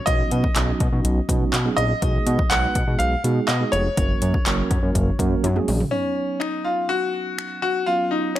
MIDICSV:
0, 0, Header, 1, 5, 480
1, 0, Start_track
1, 0, Tempo, 487805
1, 70, Time_signature, 4, 2, 24, 8
1, 8261, End_track
2, 0, Start_track
2, 0, Title_t, "Grand piano"
2, 0, Program_c, 0, 0
2, 57, Note_on_c, 0, 75, 101
2, 1722, Note_off_c, 0, 75, 0
2, 1737, Note_on_c, 0, 75, 108
2, 2458, Note_on_c, 0, 78, 104
2, 2485, Note_off_c, 0, 75, 0
2, 2939, Note_on_c, 0, 77, 102
2, 2959, Note_off_c, 0, 78, 0
2, 3418, Note_on_c, 0, 75, 87
2, 3439, Note_off_c, 0, 77, 0
2, 3659, Note_on_c, 0, 73, 99
2, 3671, Note_off_c, 0, 75, 0
2, 5545, Note_off_c, 0, 73, 0
2, 5816, Note_on_c, 0, 61, 89
2, 6296, Note_on_c, 0, 63, 91
2, 6318, Note_off_c, 0, 61, 0
2, 6539, Note_on_c, 0, 65, 90
2, 6550, Note_off_c, 0, 63, 0
2, 6767, Note_off_c, 0, 65, 0
2, 6779, Note_on_c, 0, 66, 102
2, 7486, Note_off_c, 0, 66, 0
2, 7501, Note_on_c, 0, 66, 97
2, 7728, Note_off_c, 0, 66, 0
2, 7738, Note_on_c, 0, 65, 104
2, 7979, Note_on_c, 0, 63, 84
2, 7992, Note_off_c, 0, 65, 0
2, 8221, Note_on_c, 0, 61, 81
2, 8232, Note_off_c, 0, 63, 0
2, 8261, Note_off_c, 0, 61, 0
2, 8261, End_track
3, 0, Start_track
3, 0, Title_t, "Tine electric piano"
3, 0, Program_c, 1, 4
3, 67, Note_on_c, 1, 54, 76
3, 68, Note_on_c, 1, 59, 73
3, 69, Note_on_c, 1, 61, 73
3, 70, Note_on_c, 1, 63, 70
3, 71, Note_on_c, 1, 66, 87
3, 409, Note_off_c, 1, 54, 0
3, 410, Note_off_c, 1, 59, 0
3, 410, Note_off_c, 1, 61, 0
3, 411, Note_off_c, 1, 63, 0
3, 411, Note_off_c, 1, 66, 0
3, 548, Note_on_c, 1, 54, 79
3, 550, Note_on_c, 1, 59, 72
3, 550, Note_on_c, 1, 61, 70
3, 552, Note_on_c, 1, 63, 73
3, 553, Note_on_c, 1, 66, 88
3, 805, Note_off_c, 1, 54, 0
3, 805, Note_off_c, 1, 59, 0
3, 806, Note_off_c, 1, 61, 0
3, 806, Note_off_c, 1, 63, 0
3, 807, Note_off_c, 1, 66, 0
3, 908, Note_on_c, 1, 54, 97
3, 909, Note_on_c, 1, 59, 86
3, 910, Note_on_c, 1, 61, 85
3, 912, Note_on_c, 1, 63, 88
3, 913, Note_on_c, 1, 66, 104
3, 1165, Note_off_c, 1, 54, 0
3, 1165, Note_off_c, 1, 59, 0
3, 1166, Note_off_c, 1, 61, 0
3, 1167, Note_off_c, 1, 63, 0
3, 1167, Note_off_c, 1, 66, 0
3, 1269, Note_on_c, 1, 54, 97
3, 1270, Note_on_c, 1, 59, 86
3, 1271, Note_on_c, 1, 61, 90
3, 1272, Note_on_c, 1, 63, 91
3, 1274, Note_on_c, 1, 66, 104
3, 1525, Note_off_c, 1, 54, 0
3, 1526, Note_off_c, 1, 59, 0
3, 1526, Note_off_c, 1, 61, 0
3, 1527, Note_off_c, 1, 63, 0
3, 1527, Note_off_c, 1, 66, 0
3, 1627, Note_on_c, 1, 54, 81
3, 1628, Note_on_c, 1, 59, 73
3, 1629, Note_on_c, 1, 61, 72
3, 1630, Note_on_c, 1, 63, 75
3, 1632, Note_on_c, 1, 68, 89
3, 1884, Note_off_c, 1, 54, 0
3, 1885, Note_off_c, 1, 59, 0
3, 1885, Note_off_c, 1, 61, 0
3, 1886, Note_off_c, 1, 63, 0
3, 1887, Note_off_c, 1, 68, 0
3, 1987, Note_on_c, 1, 56, 77
3, 1989, Note_on_c, 1, 59, 68
3, 1989, Note_on_c, 1, 63, 72
3, 1991, Note_on_c, 1, 66, 70
3, 1992, Note_on_c, 1, 68, 89
3, 2329, Note_off_c, 1, 56, 0
3, 2330, Note_off_c, 1, 59, 0
3, 2330, Note_off_c, 1, 63, 0
3, 2331, Note_off_c, 1, 66, 0
3, 2332, Note_off_c, 1, 68, 0
3, 2469, Note_on_c, 1, 56, 80
3, 2469, Note_on_c, 1, 59, 73
3, 2471, Note_on_c, 1, 63, 76
3, 2472, Note_on_c, 1, 71, 84
3, 2473, Note_on_c, 1, 66, 72
3, 2725, Note_off_c, 1, 56, 0
3, 2725, Note_off_c, 1, 59, 0
3, 2726, Note_off_c, 1, 63, 0
3, 2727, Note_off_c, 1, 66, 0
3, 2727, Note_off_c, 1, 71, 0
3, 2828, Note_on_c, 1, 56, 83
3, 2829, Note_on_c, 1, 59, 77
3, 2831, Note_on_c, 1, 63, 74
3, 2832, Note_on_c, 1, 68, 85
3, 2833, Note_on_c, 1, 66, 74
3, 3085, Note_off_c, 1, 56, 0
3, 3085, Note_off_c, 1, 59, 0
3, 3086, Note_off_c, 1, 63, 0
3, 3087, Note_off_c, 1, 66, 0
3, 3087, Note_off_c, 1, 68, 0
3, 3187, Note_on_c, 1, 56, 79
3, 3187, Note_on_c, 1, 59, 79
3, 3189, Note_on_c, 1, 63, 77
3, 3190, Note_on_c, 1, 66, 73
3, 3192, Note_on_c, 1, 68, 91
3, 3444, Note_off_c, 1, 56, 0
3, 3444, Note_off_c, 1, 59, 0
3, 3445, Note_off_c, 1, 63, 0
3, 3446, Note_off_c, 1, 66, 0
3, 3446, Note_off_c, 1, 68, 0
3, 3547, Note_on_c, 1, 56, 82
3, 3548, Note_on_c, 1, 59, 76
3, 3549, Note_on_c, 1, 63, 74
3, 3550, Note_on_c, 1, 66, 73
3, 3552, Note_on_c, 1, 68, 87
3, 3804, Note_off_c, 1, 56, 0
3, 3804, Note_off_c, 1, 59, 0
3, 3805, Note_off_c, 1, 63, 0
3, 3806, Note_off_c, 1, 66, 0
3, 3806, Note_off_c, 1, 68, 0
3, 3908, Note_on_c, 1, 54, 79
3, 3908, Note_on_c, 1, 58, 73
3, 3909, Note_on_c, 1, 61, 70
3, 3912, Note_on_c, 1, 66, 73
3, 3912, Note_on_c, 1, 70, 82
3, 4250, Note_off_c, 1, 54, 0
3, 4250, Note_off_c, 1, 58, 0
3, 4250, Note_off_c, 1, 61, 0
3, 4252, Note_off_c, 1, 66, 0
3, 4252, Note_off_c, 1, 70, 0
3, 4387, Note_on_c, 1, 54, 94
3, 4388, Note_on_c, 1, 58, 85
3, 4389, Note_on_c, 1, 61, 85
3, 4390, Note_on_c, 1, 66, 86
3, 4392, Note_on_c, 1, 70, 105
3, 4644, Note_off_c, 1, 54, 0
3, 4645, Note_off_c, 1, 58, 0
3, 4645, Note_off_c, 1, 61, 0
3, 4646, Note_off_c, 1, 66, 0
3, 4647, Note_off_c, 1, 70, 0
3, 4747, Note_on_c, 1, 54, 98
3, 4749, Note_on_c, 1, 58, 88
3, 4750, Note_on_c, 1, 61, 86
3, 4752, Note_on_c, 1, 66, 85
3, 4752, Note_on_c, 1, 70, 108
3, 5004, Note_off_c, 1, 54, 0
3, 5005, Note_off_c, 1, 58, 0
3, 5006, Note_off_c, 1, 61, 0
3, 5006, Note_off_c, 1, 66, 0
3, 5007, Note_off_c, 1, 70, 0
3, 5106, Note_on_c, 1, 54, 98
3, 5107, Note_on_c, 1, 58, 91
3, 5108, Note_on_c, 1, 61, 91
3, 5110, Note_on_c, 1, 66, 89
3, 5111, Note_on_c, 1, 70, 107
3, 5364, Note_off_c, 1, 54, 0
3, 5364, Note_off_c, 1, 58, 0
3, 5365, Note_off_c, 1, 61, 0
3, 5366, Note_off_c, 1, 66, 0
3, 5366, Note_off_c, 1, 70, 0
3, 5466, Note_on_c, 1, 54, 92
3, 5467, Note_on_c, 1, 58, 86
3, 5468, Note_on_c, 1, 61, 86
3, 5469, Note_on_c, 1, 66, 85
3, 5472, Note_on_c, 1, 68, 100
3, 5724, Note_off_c, 1, 54, 0
3, 5724, Note_off_c, 1, 58, 0
3, 5725, Note_off_c, 1, 61, 0
3, 5725, Note_off_c, 1, 66, 0
3, 5726, Note_off_c, 1, 68, 0
3, 5825, Note_on_c, 1, 54, 62
3, 5829, Note_on_c, 1, 59, 56
3, 5831, Note_on_c, 1, 61, 55
3, 5836, Note_on_c, 1, 63, 67
3, 7709, Note_off_c, 1, 54, 0
3, 7711, Note_off_c, 1, 59, 0
3, 7712, Note_off_c, 1, 61, 0
3, 7715, Note_off_c, 1, 63, 0
3, 7744, Note_on_c, 1, 54, 63
3, 7748, Note_on_c, 1, 59, 57
3, 7752, Note_on_c, 1, 61, 57
3, 7754, Note_on_c, 1, 65, 69
3, 8261, Note_off_c, 1, 54, 0
3, 8261, Note_off_c, 1, 59, 0
3, 8261, Note_off_c, 1, 61, 0
3, 8261, Note_off_c, 1, 65, 0
3, 8261, End_track
4, 0, Start_track
4, 0, Title_t, "Analog synth bass"
4, 0, Program_c, 2, 38
4, 70, Note_on_c, 2, 35, 111
4, 226, Note_off_c, 2, 35, 0
4, 312, Note_on_c, 2, 47, 100
4, 467, Note_off_c, 2, 47, 0
4, 551, Note_on_c, 2, 35, 117
4, 707, Note_off_c, 2, 35, 0
4, 793, Note_on_c, 2, 47, 108
4, 870, Note_off_c, 2, 47, 0
4, 910, Note_on_c, 2, 47, 103
4, 988, Note_off_c, 2, 47, 0
4, 1029, Note_on_c, 2, 35, 112
4, 1185, Note_off_c, 2, 35, 0
4, 1267, Note_on_c, 2, 47, 106
4, 1424, Note_off_c, 2, 47, 0
4, 1508, Note_on_c, 2, 47, 112
4, 1665, Note_off_c, 2, 47, 0
4, 1748, Note_on_c, 2, 34, 95
4, 1904, Note_off_c, 2, 34, 0
4, 1991, Note_on_c, 2, 35, 117
4, 2147, Note_off_c, 2, 35, 0
4, 2229, Note_on_c, 2, 47, 106
4, 2386, Note_off_c, 2, 47, 0
4, 2472, Note_on_c, 2, 35, 113
4, 2627, Note_off_c, 2, 35, 0
4, 2711, Note_on_c, 2, 47, 104
4, 2789, Note_off_c, 2, 47, 0
4, 2829, Note_on_c, 2, 47, 107
4, 2907, Note_off_c, 2, 47, 0
4, 2948, Note_on_c, 2, 35, 109
4, 3105, Note_off_c, 2, 35, 0
4, 3189, Note_on_c, 2, 47, 107
4, 3346, Note_off_c, 2, 47, 0
4, 3428, Note_on_c, 2, 47, 104
4, 3585, Note_off_c, 2, 47, 0
4, 3669, Note_on_c, 2, 29, 96
4, 3825, Note_off_c, 2, 29, 0
4, 3911, Note_on_c, 2, 30, 107
4, 4066, Note_off_c, 2, 30, 0
4, 4151, Note_on_c, 2, 42, 100
4, 4307, Note_off_c, 2, 42, 0
4, 4389, Note_on_c, 2, 30, 107
4, 4545, Note_off_c, 2, 30, 0
4, 4633, Note_on_c, 2, 42, 114
4, 4710, Note_off_c, 2, 42, 0
4, 4749, Note_on_c, 2, 42, 94
4, 4828, Note_off_c, 2, 42, 0
4, 4871, Note_on_c, 2, 30, 106
4, 5027, Note_off_c, 2, 30, 0
4, 5108, Note_on_c, 2, 42, 99
4, 5264, Note_off_c, 2, 42, 0
4, 5351, Note_on_c, 2, 42, 111
4, 5507, Note_off_c, 2, 42, 0
4, 5592, Note_on_c, 2, 34, 101
4, 5747, Note_off_c, 2, 34, 0
4, 8261, End_track
5, 0, Start_track
5, 0, Title_t, "Drums"
5, 70, Note_on_c, 9, 42, 82
5, 71, Note_on_c, 9, 36, 110
5, 169, Note_off_c, 9, 36, 0
5, 169, Note_off_c, 9, 42, 0
5, 309, Note_on_c, 9, 42, 84
5, 408, Note_off_c, 9, 42, 0
5, 431, Note_on_c, 9, 36, 92
5, 530, Note_off_c, 9, 36, 0
5, 550, Note_on_c, 9, 39, 111
5, 550, Note_on_c, 9, 42, 97
5, 648, Note_off_c, 9, 39, 0
5, 648, Note_off_c, 9, 42, 0
5, 791, Note_on_c, 9, 42, 74
5, 792, Note_on_c, 9, 36, 96
5, 889, Note_off_c, 9, 42, 0
5, 891, Note_off_c, 9, 36, 0
5, 1031, Note_on_c, 9, 42, 95
5, 1130, Note_off_c, 9, 42, 0
5, 1268, Note_on_c, 9, 36, 91
5, 1273, Note_on_c, 9, 42, 80
5, 1366, Note_off_c, 9, 36, 0
5, 1372, Note_off_c, 9, 42, 0
5, 1508, Note_on_c, 9, 39, 109
5, 1513, Note_on_c, 9, 42, 91
5, 1606, Note_off_c, 9, 39, 0
5, 1612, Note_off_c, 9, 42, 0
5, 1751, Note_on_c, 9, 42, 62
5, 1849, Note_off_c, 9, 42, 0
5, 1990, Note_on_c, 9, 36, 113
5, 1990, Note_on_c, 9, 42, 80
5, 2088, Note_off_c, 9, 42, 0
5, 2089, Note_off_c, 9, 36, 0
5, 2230, Note_on_c, 9, 42, 84
5, 2328, Note_off_c, 9, 42, 0
5, 2351, Note_on_c, 9, 36, 101
5, 2449, Note_off_c, 9, 36, 0
5, 2469, Note_on_c, 9, 39, 117
5, 2469, Note_on_c, 9, 42, 93
5, 2568, Note_off_c, 9, 39, 0
5, 2568, Note_off_c, 9, 42, 0
5, 2709, Note_on_c, 9, 42, 78
5, 2712, Note_on_c, 9, 36, 96
5, 2808, Note_off_c, 9, 42, 0
5, 2810, Note_off_c, 9, 36, 0
5, 2951, Note_on_c, 9, 42, 99
5, 3049, Note_off_c, 9, 42, 0
5, 3192, Note_on_c, 9, 42, 84
5, 3290, Note_off_c, 9, 42, 0
5, 3426, Note_on_c, 9, 39, 110
5, 3431, Note_on_c, 9, 42, 93
5, 3524, Note_off_c, 9, 39, 0
5, 3530, Note_off_c, 9, 42, 0
5, 3670, Note_on_c, 9, 42, 64
5, 3769, Note_off_c, 9, 42, 0
5, 3911, Note_on_c, 9, 36, 116
5, 3911, Note_on_c, 9, 42, 84
5, 4009, Note_off_c, 9, 36, 0
5, 4009, Note_off_c, 9, 42, 0
5, 4150, Note_on_c, 9, 42, 85
5, 4249, Note_off_c, 9, 42, 0
5, 4272, Note_on_c, 9, 36, 93
5, 4370, Note_off_c, 9, 36, 0
5, 4391, Note_on_c, 9, 42, 90
5, 4392, Note_on_c, 9, 39, 118
5, 4490, Note_off_c, 9, 39, 0
5, 4490, Note_off_c, 9, 42, 0
5, 4632, Note_on_c, 9, 42, 72
5, 4633, Note_on_c, 9, 36, 97
5, 4730, Note_off_c, 9, 42, 0
5, 4731, Note_off_c, 9, 36, 0
5, 4872, Note_on_c, 9, 36, 96
5, 4874, Note_on_c, 9, 42, 103
5, 4970, Note_off_c, 9, 36, 0
5, 4972, Note_off_c, 9, 42, 0
5, 5108, Note_on_c, 9, 36, 91
5, 5114, Note_on_c, 9, 42, 81
5, 5207, Note_off_c, 9, 36, 0
5, 5213, Note_off_c, 9, 42, 0
5, 5351, Note_on_c, 9, 48, 65
5, 5354, Note_on_c, 9, 42, 92
5, 5450, Note_off_c, 9, 48, 0
5, 5452, Note_off_c, 9, 42, 0
5, 5471, Note_on_c, 9, 47, 68
5, 5570, Note_off_c, 9, 47, 0
5, 5590, Note_on_c, 9, 45, 92
5, 5590, Note_on_c, 9, 46, 62
5, 5688, Note_off_c, 9, 46, 0
5, 5689, Note_off_c, 9, 45, 0
5, 5712, Note_on_c, 9, 43, 97
5, 5810, Note_off_c, 9, 43, 0
5, 6311, Note_on_c, 9, 26, 101
5, 6409, Note_off_c, 9, 26, 0
5, 7267, Note_on_c, 9, 26, 102
5, 7365, Note_off_c, 9, 26, 0
5, 8229, Note_on_c, 9, 26, 100
5, 8261, Note_off_c, 9, 26, 0
5, 8261, End_track
0, 0, End_of_file